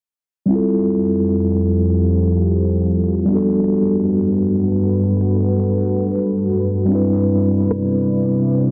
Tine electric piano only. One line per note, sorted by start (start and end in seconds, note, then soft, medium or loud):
0.46 3.24 G3 medium
0.46 3.25 C4 medium
0.50 3.26 E4 medium
0.50 3.28 F4 medium
0.55 3.29 A4 medium
3.25 6.44 G3 medium
3.25 6.45 B3 medium
3.30 6.46 D4 medium
3.30 6.47 F#4 medium
3.35 6.49 A4 medium
6.85 8.71 G3 medium
6.85 8.71 C4 medium
6.90 8.71 D4 medium
6.90 8.71 E4 medium
6.95 8.71 B4 medium